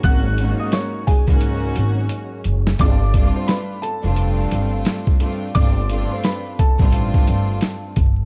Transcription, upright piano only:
0.04 0.56 F#5 medium
0.04 0.56 F#6 loud
0.60 0.72 D#5 medium
0.60 0.72 D#6 medium
0.73 1.04 C#5 medium
0.73 1.04 C#6 medium
1.07 2.76 G#4 medium
1.07 2.76 G#5 medium
2.81 3.33 D5 medium
2.81 3.32 D6 loud
3.35 3.48 C5 medium
3.35 3.48 C6 medium
3.47 3.79 B4 medium
3.47 3.79 B5 medium
3.82 5.51 A4 medium
3.82 5.51 A5 medium
5.55 6.07 D5 medium
5.55 6.07 D6 loud
6.11 6.24 C5 medium
6.11 6.23 C6 medium
6.25 6.56 B4 medium
6.25 6.56 B5 medium
6.59 8.25 A4 medium
6.59 8.25 A5 medium

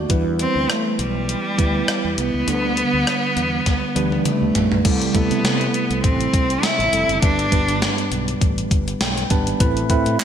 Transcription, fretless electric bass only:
0.10 0.44 E2 loud
0.56 0.66 D2 medium
0.99 1.34 B1 medium
1.59 1.81 D2 medium
2.05 2.15 E2 medium
2.18 2.30 C2 medium
2.34 2.44 C#2 medium
2.48 2.82 D2 loud
2.94 3.04 D2 medium
3.37 3.59 E2 medium
3.96 4.18 D2 medium
4.42 4.52 D2 medium
4.55 4.68 A#1 medium
4.72 4.82 B1 medium
4.85 5.07 C2 loud
5.31 5.41 C3 medium
5.44 5.67 C3 medium
5.90 6.01 C2 medium
6.04 6.26 A1 medium
6.34 6.56 C2 medium
6.79 6.89 A1 medium
6.93 7.05 F1 medium
7.09 7.19 F#1 medium
7.23 7.45 G1 loud
7.52 7.87 G1 medium
8.11 8.34 B1 medium
8.41 8.64 A1 medium
8.71 8.94 G1 medium
9.01 9.23 B1 medium
9.31 9.53 G#1 medium
9.60 9.83 A1 loud
10.06 10.16 A2 medium
10.19 10.24 A2 medium

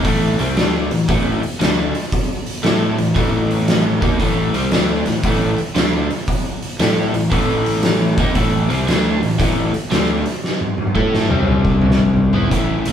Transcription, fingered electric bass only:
0.05 0.36 A1 medium
0.39 0.55 C2 medium
0.56 0.88 D2 medium
0.92 1.08 A1 medium
1.09 1.40 A1 medium
1.44 muted fingered electric bass stroke soft
1.61 1.92 D2 medium
2.64 2.96 A2 medium
2.99 3.15 A1 medium
3.16 3.98 A1 medium
4.02 4.19 D#2 medium
4.20 4.52 A1 medium
4.54 4.70 C2 medium
4.72 5.04 D2 medium
5.06 5.22 A1 medium
5.24 5.56 A1 medium
5.58 muted fingered electric bass stroke soft
5.75 6.07 D2 medium
6.79 7.11 A2 medium
7.14 7.30 A1 medium
7.32 8.14 A1 medium
8.18 8.34 D#2 medium
8.35 8.67 A1 medium
8.71 8.87 C2 medium
8.88 9.20 D2 medium
9.22 9.38 A1 medium
9.39 9.71 A1 medium
9.75 muted fingered electric bass stroke soft
9.92 10.23 D2 medium
10.95 11.27 A2 medium
11.29 12.29 C2 medium
12.33 12.50 E2 medium
12.51 12.73 A1 medium
12.85 12.92 A1 medium

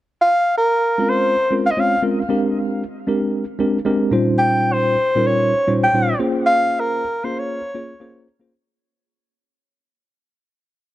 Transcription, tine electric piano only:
0.98 1.34 G#3 medium
0.98 1.35 C4 medium
0.98 1.35 C#4 medium
0.98 1.35 F4 medium
0.98 1.35 A#4 medium
1.50 1.69 G#3 medium
1.50 1.69 C4 medium
1.50 1.69 C#4 medium
1.50 1.69 F4 medium
1.50 1.70 A#4 medium
1.77 1.95 G#3 medium
1.77 1.95 C4 medium
1.77 1.96 C#4 medium
1.77 1.96 F4 medium
1.77 1.95 C#5 medium
2.02 2.21 G#3 medium
2.02 2.21 C4 medium
2.02 2.21 C#4 medium
2.02 2.21 F4 medium
2.02 2.21 A#4 medium
2.29 2.82 G#3 medium
2.29 2.82 C4 medium
2.29 2.83 D4 medium
2.29 2.83 G4 medium
2.29 2.83 A#4 medium
3.07 3.43 G#3 medium
3.07 3.43 C4 medium
3.07 3.43 D4 medium
3.07 3.44 G4 medium
3.07 3.44 A#4 medium
3.59 3.78 G#3 medium
3.59 3.77 C4 medium
3.59 3.78 D4 medium
3.59 3.78 G4 medium
3.59 3.78 A#4 medium
3.85 4.12 G#3 medium
3.85 4.12 C4 medium
3.85 4.12 D4 medium
3.85 4.12 G4 medium
3.85 4.12 A#4 medium
4.11 4.95 A#2 medium
4.11 4.95 G3 medium
4.11 4.95 C#4 medium
4.11 4.95 D#4 medium
4.11 4.96 F4 medium
4.11 4.96 C5 medium
5.15 5.51 A#2 medium
5.15 5.52 G3 medium
5.15 5.52 C#4 medium
5.15 5.52 D#4 medium
5.15 5.52 F4 medium
5.15 5.52 A#4 medium
5.67 5.86 A#2 medium
5.67 5.86 G3 medium
5.67 5.86 C#4 medium
5.67 5.86 D#4 medium
5.67 5.86 F4 medium
5.67 5.86 C5 medium
5.94 6.12 A#2 medium
5.94 6.12 G3 medium
5.94 6.12 C#4 medium
5.94 6.12 D#4 medium
5.94 6.13 F4 medium
5.94 6.13 C5 medium
6.19 7.03 A#3 medium
6.19 7.03 C#4 medium
6.19 7.03 F4 medium
6.19 7.03 G#4 medium
6.19 7.03 C5 medium
7.24 7.59 A#3 medium
7.24 7.59 C#4 medium
7.24 7.60 F4 medium
7.24 7.60 G#4 medium
7.24 7.60 C5 medium
7.74 7.93 A#3 medium
7.74 7.93 C#4 medium
7.74 7.93 F4 medium
7.74 7.94 G#4 medium
7.74 7.93 C#5 medium
8.00 8.27 A#3 medium
8.00 8.27 C#4 medium
8.00 8.27 F4 medium
8.00 8.27 G#4 medium
8.00 8.28 C5 medium
8.40 8.52 A#3 medium
8.40 8.53 C#4 medium
8.40 8.53 F4 medium
8.40 8.53 G#4 medium
8.40 8.53 C5 medium

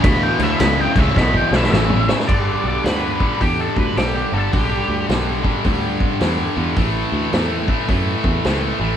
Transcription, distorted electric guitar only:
0.04 0.36 E2 medium
0.04 0.37 B2 medium
0.40 0.58 E2 medium
0.40 0.59 B2 medium
0.60 0.92 E2 medium
0.60 0.93 C#3 medium
0.97 1.15 E2 medium
0.97 1.15 C#3 medium
1.17 1.49 E2 medium
1.17 1.49 B2 medium
1.52 1.71 E2 medium
1.52 1.71 B2 loud
1.73 2.05 E2 medium
1.73 2.05 C#3 medium
2.09 2.27 E2 medium
2.09 2.27 C#3 medium
2.28 2.84 G2 medium
2.28 2.84 D3 medium
2.28 2.86 G3 medium
2.85 3.20 G2 medium
2.85 3.20 D3 medium
2.85 3.21 G3 medium
3.20 3.40 G2 medium
3.20 3.41 D3 medium
3.20 3.41 G3 medium
3.41 3.96 G2 medium
3.41 3.97 D3 medium
3.41 3.98 G3 medium
3.97 4.32 G2 medium
3.97 4.32 D3 medium
3.97 4.33 G3 medium
4.33 4.52 G2 medium
4.33 4.52 D3 medium
4.33 4.53 G3 medium
4.53 5.08 G2 medium
4.53 5.08 D3 medium
4.53 5.09 G3 loud
5.09 5.42 G2 medium
5.09 5.43 D3 medium
5.09 5.44 G3 medium
5.43 5.63 G2 medium
5.43 5.64 D3 medium
5.43 5.64 G3 medium
5.65 6.19 G2 medium
5.65 6.20 D3 medium
5.65 6.21 G3 medium
6.21 6.55 G2 medium
6.21 6.56 D3 medium
6.21 6.56 G3 medium
6.56 6.76 G2 medium
6.56 6.76 D3 medium
6.56 6.77 G3 medium
6.77 7.32 A2 medium
6.77 7.33 E3 medium
6.77 7.34 A3 medium
7.33 7.68 A2 medium
7.33 7.68 E3 medium
7.33 7.69 A3 medium
7.68 7.87 A2 medium
7.68 7.88 E3 medium
7.68 7.89 A3 medium
7.88 8.44 A2 medium
7.88 8.44 E3 medium
7.88 8.45 A3 medium
8.45 8.79 A2 medium
8.45 8.79 E3 medium
8.45 8.80 A3 medium
8.80 8.97 A2 medium
8.80 8.97 E3 medium
8.80 8.97 A3 medium

